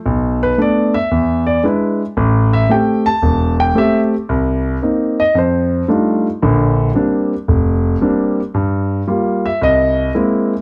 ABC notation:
X:1
M:4/4
L:1/8
Q:"Swing" 1/4=113
K:Bblyd
V:1 name="Grand piano"
z =B d e2 d B z | z e g a2 g e z | z3 _e c2 z2 | z8 |
z3 e ^d2 z2 |]
V:2 name="Grand piano"
=B,,,2 [A,=B,D] z E,,2 [^G,DE] z | A,,,2 [A,CG] z E,,,2 [A,CG] z | C,,2 [B,C_E] z F,,2 [G,A,DEF] z | [B,,,D,]2 [G,B,CD] z F,,,2 [G,B,CD] z |
G,,2 [G,B,F] z C,,2 [^G,B,CE] z |]